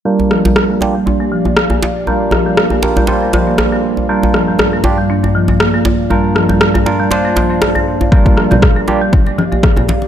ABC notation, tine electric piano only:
X:1
M:4/4
L:1/8
Q:"Swing 16ths" 1/4=119
K:Gm
V:1 name="Tine electric piano"
[G,B,DFB]3 [G,B,DFG] z4 | [G,B,DFB]3 [G,B,DFB] [G,B,DFc]4 | [DFB]3 [DFG] z4 | [DFB]3 [DFB] [DFc]4 |
[G,B,DFB]3 [G,B,DFG] z4 |]